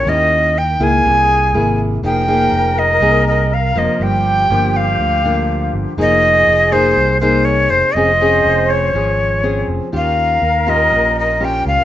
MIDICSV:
0, 0, Header, 1, 5, 480
1, 0, Start_track
1, 0, Key_signature, -4, "minor"
1, 0, Tempo, 493421
1, 56, Time_signature, 4, 2, 24, 8
1, 11518, End_track
2, 0, Start_track
2, 0, Title_t, "Flute"
2, 0, Program_c, 0, 73
2, 0, Note_on_c, 0, 73, 93
2, 87, Note_on_c, 0, 75, 88
2, 102, Note_off_c, 0, 73, 0
2, 566, Note_on_c, 0, 79, 90
2, 581, Note_off_c, 0, 75, 0
2, 810, Note_on_c, 0, 80, 98
2, 824, Note_off_c, 0, 79, 0
2, 1752, Note_off_c, 0, 80, 0
2, 2001, Note_on_c, 0, 79, 95
2, 2711, Note_on_c, 0, 75, 92
2, 2725, Note_off_c, 0, 79, 0
2, 3182, Note_off_c, 0, 75, 0
2, 3188, Note_on_c, 0, 75, 82
2, 3441, Note_on_c, 0, 77, 90
2, 3456, Note_off_c, 0, 75, 0
2, 3680, Note_on_c, 0, 75, 80
2, 3695, Note_off_c, 0, 77, 0
2, 3917, Note_on_c, 0, 79, 92
2, 3931, Note_off_c, 0, 75, 0
2, 4635, Note_on_c, 0, 77, 91
2, 4649, Note_off_c, 0, 79, 0
2, 5584, Note_off_c, 0, 77, 0
2, 5849, Note_on_c, 0, 75, 105
2, 6541, Note_on_c, 0, 72, 92
2, 6556, Note_off_c, 0, 75, 0
2, 7004, Note_off_c, 0, 72, 0
2, 7010, Note_on_c, 0, 72, 88
2, 7245, Note_on_c, 0, 73, 99
2, 7260, Note_off_c, 0, 72, 0
2, 7492, Note_on_c, 0, 72, 87
2, 7506, Note_off_c, 0, 73, 0
2, 7728, Note_on_c, 0, 75, 102
2, 7743, Note_off_c, 0, 72, 0
2, 8467, Note_on_c, 0, 73, 86
2, 8482, Note_off_c, 0, 75, 0
2, 9420, Note_off_c, 0, 73, 0
2, 9692, Note_on_c, 0, 77, 84
2, 10403, Note_on_c, 0, 75, 88
2, 10417, Note_off_c, 0, 77, 0
2, 10869, Note_off_c, 0, 75, 0
2, 10889, Note_on_c, 0, 75, 79
2, 11133, Note_on_c, 0, 79, 88
2, 11148, Note_off_c, 0, 75, 0
2, 11351, Note_off_c, 0, 79, 0
2, 11356, Note_on_c, 0, 77, 92
2, 11518, Note_off_c, 0, 77, 0
2, 11518, End_track
3, 0, Start_track
3, 0, Title_t, "Flute section"
3, 0, Program_c, 1, 73
3, 0, Note_on_c, 1, 70, 93
3, 758, Note_off_c, 1, 70, 0
3, 1017, Note_on_c, 1, 68, 99
3, 1696, Note_off_c, 1, 68, 0
3, 1970, Note_on_c, 1, 70, 96
3, 3852, Note_off_c, 1, 70, 0
3, 3896, Note_on_c, 1, 67, 97
3, 5812, Note_on_c, 1, 68, 90
3, 5815, Note_off_c, 1, 67, 0
3, 7471, Note_off_c, 1, 68, 0
3, 7732, Note_on_c, 1, 72, 112
3, 9374, Note_off_c, 1, 72, 0
3, 9658, Note_on_c, 1, 70, 103
3, 11518, Note_off_c, 1, 70, 0
3, 11518, End_track
4, 0, Start_track
4, 0, Title_t, "Nylon-string guitar"
4, 0, Program_c, 2, 24
4, 66, Note_on_c, 2, 51, 51
4, 67, Note_on_c, 2, 61, 57
4, 72, Note_on_c, 2, 64, 56
4, 77, Note_on_c, 2, 67, 57
4, 538, Note_off_c, 2, 61, 0
4, 541, Note_off_c, 2, 64, 0
4, 543, Note_off_c, 2, 67, 0
4, 780, Note_on_c, 2, 58, 65
4, 781, Note_on_c, 2, 64, 65
4, 785, Note_on_c, 2, 68, 70
4, 996, Note_off_c, 2, 51, 0
4, 1021, Note_on_c, 2, 48, 55
4, 1459, Note_off_c, 2, 58, 0
4, 1459, Note_off_c, 2, 64, 0
4, 1461, Note_off_c, 2, 68, 0
4, 1501, Note_on_c, 2, 58, 46
4, 1504, Note_on_c, 2, 68, 56
4, 1506, Note_on_c, 2, 64, 58
4, 1939, Note_off_c, 2, 58, 0
4, 1940, Note_off_c, 2, 68, 0
4, 1941, Note_off_c, 2, 64, 0
4, 1953, Note_off_c, 2, 48, 0
4, 1978, Note_on_c, 2, 58, 52
4, 1980, Note_on_c, 2, 53, 49
4, 1985, Note_on_c, 2, 63, 52
4, 1989, Note_on_c, 2, 68, 57
4, 2177, Note_off_c, 2, 58, 0
4, 2180, Note_off_c, 2, 63, 0
4, 2181, Note_off_c, 2, 68, 0
4, 2217, Note_on_c, 2, 58, 67
4, 2219, Note_on_c, 2, 63, 64
4, 2223, Note_on_c, 2, 68, 60
4, 2897, Note_off_c, 2, 58, 0
4, 2897, Note_off_c, 2, 63, 0
4, 2900, Note_off_c, 2, 68, 0
4, 2914, Note_off_c, 2, 53, 0
4, 2929, Note_on_c, 2, 48, 55
4, 2934, Note_on_c, 2, 63, 50
4, 2935, Note_on_c, 2, 58, 49
4, 2940, Note_on_c, 2, 68, 64
4, 3410, Note_off_c, 2, 58, 0
4, 3412, Note_off_c, 2, 63, 0
4, 3413, Note_off_c, 2, 68, 0
4, 3654, Note_on_c, 2, 53, 65
4, 3662, Note_on_c, 2, 58, 59
4, 3668, Note_on_c, 2, 62, 64
4, 3868, Note_off_c, 2, 48, 0
4, 3900, Note_on_c, 2, 43, 54
4, 4335, Note_off_c, 2, 53, 0
4, 4339, Note_off_c, 2, 58, 0
4, 4341, Note_off_c, 2, 62, 0
4, 4383, Note_on_c, 2, 53, 49
4, 4388, Note_on_c, 2, 58, 54
4, 4392, Note_on_c, 2, 62, 59
4, 4832, Note_off_c, 2, 43, 0
4, 4866, Note_on_c, 2, 50, 57
4, 5060, Note_off_c, 2, 53, 0
4, 5062, Note_off_c, 2, 58, 0
4, 5064, Note_off_c, 2, 62, 0
4, 5100, Note_on_c, 2, 53, 61
4, 5108, Note_on_c, 2, 58, 65
4, 5109, Note_on_c, 2, 62, 60
4, 5795, Note_off_c, 2, 50, 0
4, 5798, Note_off_c, 2, 53, 0
4, 5800, Note_off_c, 2, 58, 0
4, 5802, Note_off_c, 2, 62, 0
4, 5814, Note_on_c, 2, 53, 50
4, 5817, Note_on_c, 2, 63, 51
4, 5818, Note_on_c, 2, 58, 54
4, 5824, Note_on_c, 2, 68, 61
4, 6496, Note_off_c, 2, 58, 0
4, 6497, Note_off_c, 2, 63, 0
4, 6499, Note_off_c, 2, 68, 0
4, 6534, Note_on_c, 2, 58, 62
4, 6539, Note_on_c, 2, 63, 64
4, 6541, Note_on_c, 2, 68, 68
4, 6750, Note_off_c, 2, 53, 0
4, 6775, Note_on_c, 2, 48, 51
4, 6975, Note_off_c, 2, 58, 0
4, 6977, Note_off_c, 2, 63, 0
4, 6978, Note_off_c, 2, 68, 0
4, 7016, Note_on_c, 2, 58, 69
4, 7023, Note_on_c, 2, 63, 69
4, 7028, Note_on_c, 2, 68, 70
4, 7710, Note_off_c, 2, 48, 0
4, 7715, Note_off_c, 2, 58, 0
4, 7719, Note_off_c, 2, 63, 0
4, 7721, Note_off_c, 2, 68, 0
4, 7744, Note_on_c, 2, 60, 54
4, 7747, Note_on_c, 2, 53, 49
4, 7750, Note_on_c, 2, 61, 51
4, 7756, Note_on_c, 2, 68, 61
4, 7880, Note_off_c, 2, 60, 0
4, 7882, Note_off_c, 2, 61, 0
4, 7883, Note_off_c, 2, 68, 0
4, 7984, Note_on_c, 2, 60, 57
4, 7990, Note_on_c, 2, 61, 63
4, 7997, Note_on_c, 2, 68, 72
4, 8661, Note_off_c, 2, 60, 0
4, 8662, Note_off_c, 2, 61, 0
4, 8666, Note_off_c, 2, 68, 0
4, 8677, Note_off_c, 2, 53, 0
4, 8702, Note_on_c, 2, 53, 52
4, 8707, Note_on_c, 2, 61, 50
4, 8714, Note_on_c, 2, 68, 57
4, 9142, Note_off_c, 2, 61, 0
4, 9145, Note_off_c, 2, 68, 0
4, 9174, Note_on_c, 2, 60, 51
4, 9178, Note_on_c, 2, 61, 56
4, 9182, Note_on_c, 2, 68, 60
4, 9616, Note_off_c, 2, 60, 0
4, 9617, Note_off_c, 2, 61, 0
4, 9619, Note_off_c, 2, 68, 0
4, 9634, Note_off_c, 2, 53, 0
4, 9654, Note_on_c, 2, 51, 50
4, 9656, Note_on_c, 2, 61, 44
4, 9659, Note_on_c, 2, 65, 54
4, 9665, Note_on_c, 2, 67, 58
4, 10132, Note_off_c, 2, 61, 0
4, 10134, Note_off_c, 2, 65, 0
4, 10135, Note_off_c, 2, 67, 0
4, 10376, Note_on_c, 2, 61, 65
4, 10384, Note_on_c, 2, 65, 66
4, 10388, Note_on_c, 2, 67, 71
4, 10590, Note_off_c, 2, 51, 0
4, 10622, Note_on_c, 2, 46, 52
4, 11057, Note_off_c, 2, 61, 0
4, 11061, Note_off_c, 2, 65, 0
4, 11063, Note_off_c, 2, 67, 0
4, 11092, Note_on_c, 2, 61, 51
4, 11096, Note_on_c, 2, 65, 50
4, 11101, Note_on_c, 2, 67, 59
4, 11518, Note_off_c, 2, 46, 0
4, 11518, Note_off_c, 2, 61, 0
4, 11518, Note_off_c, 2, 65, 0
4, 11518, Note_off_c, 2, 67, 0
4, 11518, End_track
5, 0, Start_track
5, 0, Title_t, "Fingered electric bass"
5, 0, Program_c, 3, 33
5, 53, Note_on_c, 3, 39, 100
5, 735, Note_off_c, 3, 39, 0
5, 773, Note_on_c, 3, 37, 85
5, 997, Note_off_c, 3, 37, 0
5, 1025, Note_on_c, 3, 36, 91
5, 1488, Note_on_c, 3, 32, 92
5, 1503, Note_off_c, 3, 36, 0
5, 1937, Note_off_c, 3, 32, 0
5, 1968, Note_on_c, 3, 29, 87
5, 2417, Note_off_c, 3, 29, 0
5, 2449, Note_on_c, 3, 29, 89
5, 2897, Note_off_c, 3, 29, 0
5, 2924, Note_on_c, 3, 36, 88
5, 3610, Note_off_c, 3, 36, 0
5, 3649, Note_on_c, 3, 29, 94
5, 3762, Note_off_c, 3, 29, 0
5, 3887, Note_on_c, 3, 31, 89
5, 4336, Note_off_c, 3, 31, 0
5, 4377, Note_on_c, 3, 31, 99
5, 4821, Note_off_c, 3, 31, 0
5, 4849, Note_on_c, 3, 38, 86
5, 5532, Note_off_c, 3, 38, 0
5, 5578, Note_on_c, 3, 31, 103
5, 5687, Note_off_c, 3, 31, 0
5, 5812, Note_on_c, 3, 29, 89
5, 6259, Note_off_c, 3, 29, 0
5, 6296, Note_on_c, 3, 29, 93
5, 6741, Note_off_c, 3, 29, 0
5, 6772, Note_on_c, 3, 36, 91
5, 7453, Note_off_c, 3, 36, 0
5, 7495, Note_on_c, 3, 29, 101
5, 7606, Note_off_c, 3, 29, 0
5, 7733, Note_on_c, 3, 29, 92
5, 8179, Note_off_c, 3, 29, 0
5, 8218, Note_on_c, 3, 29, 98
5, 8662, Note_off_c, 3, 29, 0
5, 8695, Note_on_c, 3, 32, 87
5, 9375, Note_off_c, 3, 32, 0
5, 9416, Note_on_c, 3, 29, 96
5, 9526, Note_off_c, 3, 29, 0
5, 9660, Note_on_c, 3, 39, 90
5, 10104, Note_off_c, 3, 39, 0
5, 10135, Note_on_c, 3, 39, 95
5, 10581, Note_off_c, 3, 39, 0
5, 10617, Note_on_c, 3, 34, 100
5, 11297, Note_off_c, 3, 34, 0
5, 11337, Note_on_c, 3, 37, 98
5, 11448, Note_off_c, 3, 37, 0
5, 11518, End_track
0, 0, End_of_file